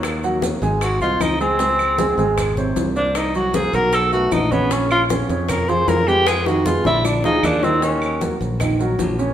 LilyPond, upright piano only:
\new Staff \with { instrumentName = "Upright piano" } { \time 4/4 \key bes \minor \tempo 4 = 154 <bes bes' des''>8 <ges ges' ges''>8 <bes bes' des''>8 <aes aes' aes''>4 <c' c'' ees''>4 <aes aes' aes''>8 | <aes aes' aes''>4 <aes aes' aes''>8 <aes aes' aes''>4 <c c'' des''>4 <bes bes' c''>8~ | <bes bes' c''>8 <ges ges' ges''>8 <bes bes' c''>8 <ges ges' ges''>4 <a a' b'>4 <cis cis' cis''>8 | <des des' des''>4 <des des' des''>8 <des des' des''>4 <f f' aes'>4 <aes aes' ces''>8~ |
<aes aes' ces''>8 <ees ees' ees''>8 <aes aes' ces''>8 <d d' d''>4 <f f' aes'>4 <ees ees' ees''>8 | \key ees \minor <ees ees' ees''>4 <ges ges' bes'>4 <ees ees' ees''>8 <ges ges' bes'>4 <des des' des''>8 | }